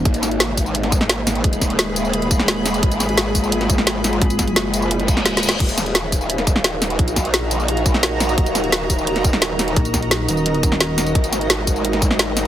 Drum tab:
CC |------------------------------------------------|------------------------------------------------|------------------------------------------------|------------------------------------------------|
HH |x--x--x--x--x-----o-----x--x--x-----x-----o--x--|x--x--x--x--x-----o-----x--x--x-----x-----o--x--|x--x--x--x--x-----o-----x--x--x-----x-----o--x--|x--x--x--x--x-----o-----x--x--x-----x-----o--x--|
TB |---x--x-----------x--x--------x-----------x-----|---x--x-----------x--x--------x-----------x--x--|---x--x-----------x--x--------x-----------x-----|---x--x-----------x--x--------x-----------x--x--|
SD |------o-----o--------------o-----o--o-----o-----|------o-----o--------------------o--o-----o-----|------o-----o--------------o-----o--o-----o-----|------o-----o--------------------o--o---o---o---|
BD |o-----------------o-----------o-----------------|o-----o-----------------------o-----------------|o-----------------o-----------o-----------------|o-----o-----------------------o-----------------|

CC |x-----------------------------------------------|------------------------------------------------|------------------------------------------------|------------------------------------------------|
HH |x--x--x--x--x-----o-----x--x--x-----x-----o--x--|x--x--x--x--x-----o-----x--x--x-----x-----o--x--|x--x--x--x--x-----o-----x--x--x-----x-----o--x--|x--x--x--x--x-----o-----x--x--x-----x-----o--x--|
TB |---x--x-----------x--x--------x-----------x-----|---x--x-----------x--x--------x-----------x--x--|---x--x-----------x--x--------x-----------x-----|---x--x-----------x--x--------x-----------x--x--|
SD |------o-----o--------------o-----o--o-----o-----|------o-----o--------------------o--o-----o-----|------o-----o--------------o-----o--o-----o-----|------o-----o--------------------o--o-----o-----|
BD |o-----------------o-----------o-----------------|o-----o-----------------------o-----------------|o-----------------o-----------o-----------------|o-----o-----------------------o-----------------|

CC |------------------------------------------------|
HH |x--x--x--x--x-----o-----x--x--x-----x-----o-----|
TB |---x--x-----------x--x--------x-----------x-----|
SD |------o-----o--------------o-----o--o-----o-----|
BD |o-----------------o-----------o-----------------|